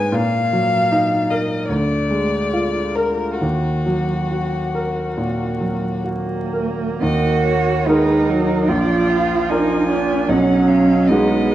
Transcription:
Already playing: grand piano G#2 G#3 D#4 B4, violin G#5
0.12 grand piano A#2, violin F5
0.53 grand piano F#3
0.92 grand piano D#4
1.30 grand piano A#4, violin D#5
1.69 grand piano D2, violin D5
2.11 grand piano G#3
2.53 grand piano F4
2.95 violin A#4, grand piano A#4
3.40 grand piano D#2, violin F#4
3.86 grand piano F#3
4.31 grand piano F#4
4.75 grand piano A#4
5.17 grand piano A#2
5.60 grand piano F#3
6.04 cello A#3, grand piano F#4
6.53 grand piano A#4
7.01 grand piano D#2, viola A#3, cello F#4, violin D#5
7.45 violin C#5
7.87 viola G#3, cello D#4, grand piano D#4 A#4, violin B4
8.29 viola F#3, violin A#4
8.68 grand piano A#1, viola F3, cello F4, violin D5
9.10 violin F5
9.50 grand piano D4 A#4, cello D#4, violin G#5
9.90 cello D4
10.29 grand piano B1, viola F#3, cello C#4, violin F#5
10.68 violin F5
11.07 viola G#3, grand piano G#3 D#4, cello B3, violin D#5
11.11 grand piano F#4

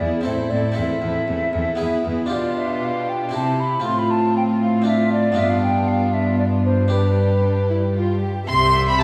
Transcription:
Already playing: harpsichord B3 E4 G#4
0.00 harpsichord E2, cello section E2, viola section B3, violin section E4 G#4, flute D5
0.21 harpsichord C4 E4 A4, viola section C4, flute C5
0.26 harpsichord A2, cello section A2, violin section E4 A4
0.50 harpsichord A2, cello section A2, viola section C4, violin section E4 A4, flute D5
0.72 harpsichord C4 E4 A4, flute E5
0.77 harpsichord E2, cello section E2, viola section C4, violin section E4 A4
1.02 harpsichord E2, cello section E2, viola section C4, violin section E4 A4
1.28 harpsichord E2, cello section E2, viola section C4, violin section E4 A4
1.53 harpsichord E2, cello section E2, viola section C4, violin section E4 A4
1.75 harpsichord B3 E4 G#4, viola section B3
1.80 harpsichord E2, cello section E2, violin section E4 G#4
2.05 harpsichord E2, cello section E2, viola section B3, violin section E4 G#4
2.26 harpsichord D4 F4 G4
2.31 harpsichord B2, cello section B2, viola section D4, violin section F4 G4, flute D5
2.58 flute E5
2.84 flute F5
3.09 flute G5
3.29 harpsichord C4 E4 G4
3.33 harpsichord C3, cello section C3, viola section C4, violin section E4, flute A5
3.60 flute B5
3.80 harpsichord C4 F4, violin section F4
3.84 harpsichord A2, cello section A2, violin section F4, flute C6
3.99 flute B5
4.11 flute A5
4.37 flute G5
4.62 flute F5
4.82 harpsichord C4 D4 F4
4.86 violin section D4, flute E5
5.13 flute D5
5.32 harpsichord B3 D4 F4
5.37 harpsichord G2, cello section G2, viola section B3, flute E5
5.50 flute F5
5.62 flute G5
5.88 flute F5
6.13 flute E5
6.39 flute D5
6.65 flute C5
6.88 viola section G3, harpsichord D4 G4, violin section G4, flute B4
6.92 violin section D4
7.45 violin section D4
7.70 violin section E4
7.96 violin section F4
8.23 violin section G4
8.48 double bass section C2, harpsichord C3, cello section C3, viola section G4, violin section E5 C6, flute C6
8.88 flute B5, violin section B5

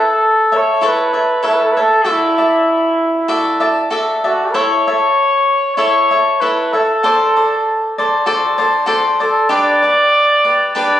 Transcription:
Already playing: cavaquinho A4 C#5 E5, trumpet A4
0.52 cavaquinho A4 C#5 E5
0.57 trumpet C#5
0.81 cavaquinho E4 A4 C#5 E5
0.86 trumpet B4
1.13 cavaquinho A4 C#5 E5
1.43 cavaquinho E4 A4 C#5 E5, trumpet A4
1.54 trumpet B4
1.62 trumpet A4
1.71 trumpet B4
1.77 cavaquinho A4 C#5 E5
1.81 trumpet A4
2.04 cavaquinho F#4 A4 D5 E5
2.09 trumpet E4
2.38 cavaquinho A4 D5 E5
3.28 cavaquinho F#4 A4 D5 E5
3.60 cavaquinho A4 D5 E5
3.90 cavaquinho F#4 A4 D5 E5
4.24 trumpet F#4, cavaquinho A4 D5 E5
4.54 cavaquinho E4 A4 C#5 E5, trumpet C#5
4.87 cavaquinho A4 C#5 E5
5.76 cavaquinho E4 A4 C#5 E5, trumpet C#5
6.11 cavaquinho A4 C#5 E5
6.41 cavaquinho E4 A4 C#5 E5, trumpet B4
6.73 trumpet A4, cavaquinho A4 C#5 E5
7.03 cavaquinho F#4 A4 C5 D5
7.36 cavaquinho A4 C5 D5
7.98 cavaquinho A4 C5 D5
8.26 cavaquinho F#4 A4 C5 D5
8.58 cavaquinho A4 C5 D5
8.86 cavaquinho F#4 A4 C5 D5
9.20 cavaquinho A4 C5 D5, trumpet A4
9.49 cavaquinho D4 G4 B4 D5, trumpet D5
9.82 cavaquinho G4 B4 D5
10.45 cavaquinho G4 B4 D5
10.75 cavaquinho D4 G4 B4 D5, trumpet D5

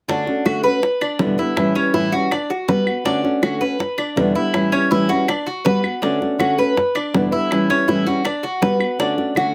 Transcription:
0.08 nylon-string guitar D3 A3 C#4 F#4, cuban tres D4, high bongo
0.26 nylon-string guitar A3 C#4 F#4, high bongo
0.45 nylon-string guitar D3 A3 C#4 F#4, cuban tres F#4, high bongo, claves
0.63 nylon-string guitar A3 C#4 F#4, cuban tres B4
0.82 muted nylon-string guitar stroke, high bongo
1.01 cuban tres D4, high bongo, claves
1.19 nylon-string guitar E2 B2 D3 G3 B3 E4, high bongo, low bongo
1.38 nylon-string guitar D3 G3 B3 E4, cuban tres E4, high bongo
1.56 nylon-string guitar A2 E3 G3 C#4 E4, high bongo, claves
1.75 nylon-string guitar G3 C#4 E4, cuban tres C#4, high bongo
1.94 nylon-string guitar A2 E3 G3 C#4 E4, cuban tres E4, high bongo
2.12 nylon-string guitar G3 C#4 E4, cuban tres F#4, high bongo
2.31 cuban tres D4, muted nylon-string guitar stroke, high bongo, claves
2.50 cuban tres F#4, high bongo
2.68 nylon-string guitar G3 B3 F#4, cuban tres B4, high bongo, low bongo
2.87 nylon-string guitar B3 F#4, claves
3.04 nylon-string guitar D3 A3 C#4 F#4, cuban tres D4, high bongo
3.23 nylon-string guitar A3 C#4 F#4, high bongo
3.42 nylon-string guitar D3 A3 C#4 F#4, cuban tres F#4, high bongo, claves
3.60 nylon-string guitar A3 C#4 F#4, cuban tres B4
3.79 muted nylon-string guitar stroke, high bongo
3.98 cuban tres D4, high bongo, claves
4.16 nylon-string guitar E2 B2 D3 G3 B3 E4, high bongo, low bongo
4.35 nylon-string guitar D3 G3 B3 E4, cuban tres E4, high bongo
4.53 nylon-string guitar A2 E3 G3 C#4 E4, high bongo, claves
4.72 nylon-string guitar G3 C#4 E4, cuban tres C#4, high bongo
4.90 nylon-string guitar A2 E3 G3 C#4 E4, cuban tres E4, high bongo
5.09 nylon-string guitar G3 C#4 E4, cuban tres F#4, high bongo
5.28 cuban tres D4, muted nylon-string guitar stroke, high bongo, claves
5.47 cuban tres F#4, high bongo
5.65 nylon-string guitar G3 B3 F#4, cuban tres B4, high bongo, low bongo
5.84 nylon-string guitar B3 F#4, claves
6.02 nylon-string guitar D3 A3 C#4 F#4, cuban tres D4, high bongo
6.21 nylon-string guitar A3 C#4 F#4, high bongo
6.38 nylon-string guitar D3 A3 C#4 F#4, cuban tres F#4, high bongo, claves
6.57 nylon-string guitar A3 C#4 F#4, cuban tres B4
6.77 muted nylon-string guitar stroke, high bongo
6.95 cuban tres D4, high bongo, claves
7.14 nylon-string guitar E2 B2 D3 G3 B3 E4, high bongo, low bongo
7.31 nylon-string guitar D3 G3 B3 E4, cuban tres E4, high bongo
7.51 nylon-string guitar A2 E3 G3 C#4 E4, high bongo, claves
7.69 nylon-string guitar G3 C#4 E4, cuban tres C#4, high bongo
7.88 nylon-string guitar A2 E3 G3 C#4 E4, cuban tres E4, high bongo
8.07 nylon-string guitar G3 C#4 E4, cuban tres F#4, high bongo
8.25 cuban tres D4, muted nylon-string guitar stroke, high bongo, claves
8.43 cuban tres F#4, high bongo
8.61 nylon-string guitar G3 B3 F#4, cuban tres B4, high bongo, low bongo
8.80 nylon-string guitar B3 F#4, claves
8.99 nylon-string guitar D3 A3 C#4 F#4, cuban tres D4, high bongo
9.17 nylon-string guitar A3 C#4 F#4, high bongo
9.35 nylon-string guitar D3 A3 C#4 F#4, cuban tres F#4, high bongo, claves

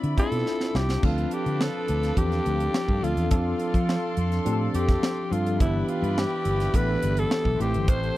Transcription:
Already playing: string section F3 D5 E5 B5, tine electric piano C4 D4 E4 F4
0.04 fingered electric bass D3, closed hi-hat
0.17 tine electric piano C4 D4 E4 F4, alto saxophone A4, kick, closed hi-hat
0.32 fingered electric bass B2, closed hi-hat
0.46 snare
0.60 snare
0.75 fingered electric bass C2, alto saxophone G4, snare
0.89 snare
1.02 fingered electric bass D2, tine electric piano F3 C4 D4 A4, horn section D4 F4 B4, alto saxophone F4, string section A4 D5 F5 A5, kick, crash
1.18 closed hi-hat
1.31 alto saxophone G4, closed hi-hat
1.46 fingered electric bass D3, closed hi-hat
1.61 alto saxophone A4, snare
1.88 fingered electric bass D2, closed hi-hat
2.03 snare, closed hi-hat
2.17 fingered electric bass E2, tine electric piano F3 C4 D4 A4, alto saxophone G4, kick, closed hi-hat
2.32 snare, closed hi-hat
2.46 fingered electric bass D2, closed hi-hat
2.60 closed hi-hat
2.74 snare
2.88 fingered electric bass G2, kick
3.02 fingered electric bass D2, tine electric piano F3 C4 D4 A4, alto saxophone F4, closed hi-hat
3.17 fingered electric bass E2, closed hi-hat
3.30 fingered electric bass F2, tine electric piano F3 C4 D4 A4, horn section D4 F4 A4, alto saxophone F4, string section D5 C6, kick, closed hi-hat
3.59 closed hi-hat
3.74 fingered electric bass F3, kick, closed hi-hat
3.89 snare
4.17 fingered electric bass F2, closed hi-hat
4.32 snare, closed hi-hat
4.45 fingered electric bass A2, tine electric piano F3 C4 D4 G4, closed hi-hat
4.53 tine electric piano A4
4.74 fingered electric bass F2, alto saxophone G4, closed hi-hat
4.89 kick, snare, closed hi-hat
5.03 snare
5.31 fingered electric bass G2, tine electric piano F3 C4 D4 A4, alto saxophone F4, closed hi-hat
5.46 closed hi-hat
5.60 fingered electric bass G1, tine electric piano E3 B3 D4 G4, horn section E4 G4 B4, alto saxophone E4, string section G4 D5 E5 B5, kick, closed hi-hat
5.89 alto saxophone F4, closed hi-hat
6.02 fingered electric bass G2, closed hi-hat
6.18 alto saxophone G4, snare
6.45 fingered electric bass G1, closed hi-hat
6.60 snare, closed hi-hat
6.74 fingered electric bass A1, tine electric piano E3 B3 D4 A4, alto saxophone B4, kick, closed hi-hat
7.02 fingered electric bass G1, closed hi-hat
7.17 alto saxophone A4, closed hi-hat
7.31 snare
7.45 fingered electric bass B1, kick
7.59 fingered electric bass A1, tine electric piano E3 A3 C4 G4, horn section G4 A4 C5, alto saxophone G4, string section A4 E5 G5 C6, closed hi-hat
7.74 fingered electric bass G1, closed hi-hat
7.88 fingered electric bass A1, alto saxophone C5, kick, closed hi-hat
8.03 closed hi-hat

